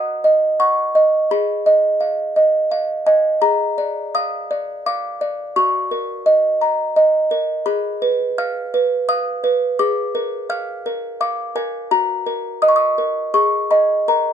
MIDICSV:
0, 0, Header, 1, 2, 480
1, 0, Start_track
1, 0, Key_signature, -6, "minor"
1, 0, Tempo, 711744
1, 877, Time_signature, 3, 2, 24, 8
1, 3280, Tempo, 698487
1, 5200, Tempo, 709220
1, 8560, Tempo, 732601
1, 9679, End_track
2, 0, Start_track
2, 0, Title_t, "Music box"
2, 0, Program_c, 0, 10
2, 0, Note_on_c, 0, 66, 66
2, 0, Note_on_c, 0, 75, 48
2, 0, Note_on_c, 0, 78, 51
2, 0, Note_on_c, 0, 87, 86
2, 68, Note_off_c, 0, 75, 0
2, 163, Note_on_c, 0, 75, 45
2, 307, Note_off_c, 0, 78, 0
2, 383, Note_off_c, 0, 87, 0
2, 403, Note_on_c, 0, 78, 59
2, 403, Note_on_c, 0, 85, 96
2, 544, Note_off_c, 0, 75, 0
2, 642, Note_on_c, 0, 75, 50
2, 784, Note_off_c, 0, 78, 0
2, 853, Note_off_c, 0, 66, 0
2, 860, Note_off_c, 0, 85, 0
2, 879, Note_off_c, 0, 75, 0
2, 885, Note_on_c, 0, 68, 62
2, 885, Note_on_c, 0, 83, 83
2, 1120, Note_on_c, 0, 75, 52
2, 1353, Note_on_c, 0, 77, 49
2, 1495, Note_off_c, 0, 75, 0
2, 1593, Note_on_c, 0, 75, 45
2, 1731, Note_off_c, 0, 77, 0
2, 1803, Note_off_c, 0, 83, 0
2, 1831, Note_on_c, 0, 77, 57
2, 1972, Note_off_c, 0, 75, 0
2, 2067, Note_on_c, 0, 75, 49
2, 2067, Note_on_c, 0, 80, 79
2, 2211, Note_off_c, 0, 77, 0
2, 2281, Note_off_c, 0, 68, 0
2, 2296, Note_off_c, 0, 80, 0
2, 2304, Note_on_c, 0, 82, 87
2, 2305, Note_off_c, 0, 75, 0
2, 2305, Note_on_c, 0, 68, 62
2, 2549, Note_on_c, 0, 74, 48
2, 2776, Note_off_c, 0, 82, 0
2, 2797, Note_on_c, 0, 87, 95
2, 2798, Note_on_c, 0, 77, 50
2, 2943, Note_off_c, 0, 74, 0
2, 3040, Note_on_c, 0, 74, 45
2, 3185, Note_off_c, 0, 77, 0
2, 3260, Note_off_c, 0, 87, 0
2, 3280, Note_on_c, 0, 77, 55
2, 3280, Note_on_c, 0, 86, 84
2, 3425, Note_off_c, 0, 74, 0
2, 3519, Note_on_c, 0, 74, 49
2, 3666, Note_off_c, 0, 77, 0
2, 3735, Note_off_c, 0, 68, 0
2, 3743, Note_off_c, 0, 86, 0
2, 3760, Note_on_c, 0, 85, 91
2, 3761, Note_off_c, 0, 74, 0
2, 3761, Note_on_c, 0, 66, 64
2, 4001, Note_on_c, 0, 70, 51
2, 4239, Note_on_c, 0, 75, 54
2, 4385, Note_off_c, 0, 70, 0
2, 4483, Note_on_c, 0, 82, 50
2, 4623, Note_off_c, 0, 75, 0
2, 4691, Note_off_c, 0, 85, 0
2, 4723, Note_on_c, 0, 75, 60
2, 4863, Note_off_c, 0, 82, 0
2, 4962, Note_on_c, 0, 70, 56
2, 5104, Note_off_c, 0, 75, 0
2, 5171, Note_off_c, 0, 66, 0
2, 5200, Note_on_c, 0, 83, 94
2, 5201, Note_off_c, 0, 70, 0
2, 5201, Note_on_c, 0, 68, 69
2, 5445, Note_on_c, 0, 71, 54
2, 5672, Note_off_c, 0, 83, 0
2, 5691, Note_on_c, 0, 77, 57
2, 5691, Note_on_c, 0, 89, 105
2, 5836, Note_off_c, 0, 71, 0
2, 5932, Note_on_c, 0, 71, 51
2, 6075, Note_off_c, 0, 77, 0
2, 6151, Note_off_c, 0, 89, 0
2, 6167, Note_on_c, 0, 77, 60
2, 6167, Note_on_c, 0, 87, 115
2, 6313, Note_off_c, 0, 71, 0
2, 6405, Note_on_c, 0, 71, 56
2, 6548, Note_off_c, 0, 77, 0
2, 6618, Note_off_c, 0, 68, 0
2, 6624, Note_off_c, 0, 87, 0
2, 6643, Note_off_c, 0, 71, 0
2, 6645, Note_on_c, 0, 86, 99
2, 6646, Note_on_c, 0, 68, 68
2, 6885, Note_on_c, 0, 70, 57
2, 7101, Note_off_c, 0, 86, 0
2, 7121, Note_on_c, 0, 77, 54
2, 7123, Note_on_c, 0, 89, 93
2, 7265, Note_off_c, 0, 70, 0
2, 7366, Note_on_c, 0, 70, 49
2, 7503, Note_off_c, 0, 77, 0
2, 7581, Note_off_c, 0, 89, 0
2, 7602, Note_on_c, 0, 77, 64
2, 7603, Note_on_c, 0, 86, 102
2, 7746, Note_off_c, 0, 70, 0
2, 7831, Note_off_c, 0, 86, 0
2, 7838, Note_on_c, 0, 70, 56
2, 7840, Note_on_c, 0, 80, 82
2, 7984, Note_off_c, 0, 77, 0
2, 8051, Note_off_c, 0, 68, 0
2, 8069, Note_off_c, 0, 80, 0
2, 8078, Note_off_c, 0, 70, 0
2, 8079, Note_on_c, 0, 82, 95
2, 8081, Note_on_c, 0, 66, 73
2, 8318, Note_on_c, 0, 70, 49
2, 8539, Note_off_c, 0, 82, 0
2, 8558, Note_on_c, 0, 87, 95
2, 8561, Note_on_c, 0, 75, 51
2, 8601, Note_on_c, 0, 85, 81
2, 8604, Note_off_c, 0, 87, 0
2, 8648, Note_off_c, 0, 85, 0
2, 8650, Note_on_c, 0, 87, 85
2, 8698, Note_off_c, 0, 70, 0
2, 8795, Note_on_c, 0, 70, 45
2, 8936, Note_off_c, 0, 75, 0
2, 9005, Note_off_c, 0, 66, 0
2, 9015, Note_off_c, 0, 87, 0
2, 9030, Note_on_c, 0, 68, 67
2, 9030, Note_on_c, 0, 85, 87
2, 9031, Note_off_c, 0, 70, 0
2, 9261, Note_off_c, 0, 85, 0
2, 9270, Note_on_c, 0, 83, 70
2, 9273, Note_on_c, 0, 75, 44
2, 9273, Note_on_c, 0, 80, 48
2, 9491, Note_off_c, 0, 75, 0
2, 9491, Note_off_c, 0, 80, 0
2, 9500, Note_off_c, 0, 68, 0
2, 9504, Note_off_c, 0, 83, 0
2, 9516, Note_on_c, 0, 70, 58
2, 9517, Note_on_c, 0, 82, 74
2, 9679, Note_off_c, 0, 70, 0
2, 9679, Note_off_c, 0, 82, 0
2, 9679, End_track
0, 0, End_of_file